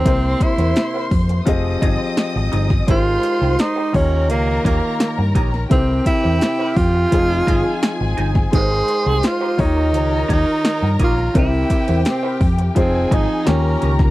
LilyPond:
<<
  \new Staff \with { instrumentName = "Violin section" } { \time 4/4 \key c \phrygian \tempo 4 = 85 <c'' c'''>2 <ees'' ees'''>2 | <c'' c'''>4. <bes' bes''>2~ <bes' bes''>8 | <g' g''>2 <aes' aes''>2 | <c'' c'''>4. <bes' bes''>2~ <bes' bes''>8 |
<g' g''>2 <aes' aes''>4 <bes' bes''>4 | }
  \new Staff \with { instrumentName = "Clean electric guitar" } { \time 4/4 \key c \phrygian <e' bes' c''>16 r8 <e' bes' c''>16 r16 <e' bes' c''>16 r4 <ees' aes' c''>16 r8. <ees' aes' c''>16 r16 | <ees' g' c''>16 r8 <ees' g' c''>16 r16 <ees' g' c''>16 r4 <ees' g' des''>16 r8. <ees' g' des''>16 r16 | <e' bes' c''>16 r8 <e' bes' c''>16 r16 <e' bes' c''>16 r4 <ees' aes' c''>16 r8. <ees' aes' c''>16 r16 | <ees' g' c''>16 r8 <ees' g' c''>16 r16 <ees' g' c''>16 r4 <ees' g' des''>16 r8. <ees' g' des''>16 r16 |
<e' bes' c''>16 r8 <e' bes' c''>16 r16 <e' bes' c''>16 r4 <ees' aes' c''>16 r16 <des' g' bes'>16 r16 <des' g' bes'>16 r16 | }
  \new Staff \with { instrumentName = "Grand piano" } { \time 4/4 \key c \phrygian <c bes e' g' c''>2 <f c' g' aes' ees''>2 | <aes ees' g' bes' c''>4. <ees ees' f' g' des''>2 r8 | <c c' e' g' a' bes'>2 <f c' ees' f' aes'>2 | <aes ees' bes' ces'' c'' g''>4. <ees ees' f' g' des''>2 r8 |
<c c' e' g' bes'>2 <f c' ees' f' aes'>4 <ees bes des' f' g'>4 | }
  \new Staff \with { instrumentName = "Tenor saxophone" } { \time 4/4 \key c \phrygian c'8 e'4 r2 r8 | f'4 ees'8 des'8 bes8 bes4 r8 | c'8 e'4 f'2 r8 | aes'4 f'8 ees'4 ees'4 f'8 |
e'4 c'8 r8 c'8 ees'8 des'8. r16 | }
  \new Staff \with { instrumentName = "Fingered electric bass" } { \clef bass \time 4/4 \key c \phrygian c,8 r16 e,16 r8 f,8 f,,8 g,,16 r8 aes,,16 g,,8 | aes,,8 r16 c,16 r8 ees,8 des,8 ees,16 r8 g,16 bes,,8 | c,8 r16 e,16 r8 f,8 f,,8 g,,16 r8 aes,,16 g,,8 | aes,,8 r16 c,16 r8 ees,8 des,8 ees,16 r8 g,16 bes,,8 |
c,8 r16 e,16 r8 f,8 f,,8 aes,,16 r16 ees,8 des,8 | }
  \new DrumStaff \with { instrumentName = "Drums" } \drummode { \time 4/4 <hh bd>8 <hh bd>16 <hh sn>16 <hh sn>8 <hho bd>16 hh16 <hh bd>8 <hh bd>8 <hh sn>8 hh16 <bd sn>16 | <hh bd>8 hh8 <hh sn>8 <hho bd>8 hh8 <hh bd>8 <hh sn>8 <hh bd>16 sn16 | <hh bd>8 <hh bd>8 <hh sn>8 <hho bd>8 <hh bd>8 <hh bd>8 <hh sn>8 hh16 <bd sn>16 | <hh bd>8 hh8 <hh sn>8 <hho bd>8 hh8 <hh bd>8 <hh sn>8 <hh bd>16 sn16 |
<hh bd>8 <hh bd>16 <hh sn>16 <hh sn>8 <hho bd>16 hh16 <hh bd>8 <hh bd>8 <hh sn>8 hh16 <bd sn>16 | }
>>